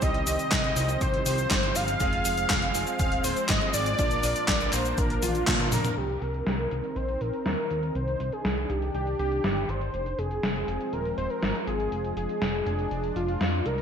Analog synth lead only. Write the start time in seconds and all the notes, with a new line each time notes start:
0.02 D#5
0.27 D#5
1.01 C5
1.26 C5
1.76 F5
3.00 F5
3.24 C5
3.49 D#5
3.74 D5
4.73 C5
4.98 A#4
5.23 F4
5.72 A#4
5.97 G4
6.22 A#4
6.96 C5
7.21 A#4
7.46 A#4
7.96 C5
8.33 G#4
8.70 G4
8.95 G4
9.19 G4
9.69 C5
10.19 G#4
10.93 A#4
11.18 C5
11.30 A#4
11.67 G#4
12.17 G#4
13.16 F4
13.66 A#4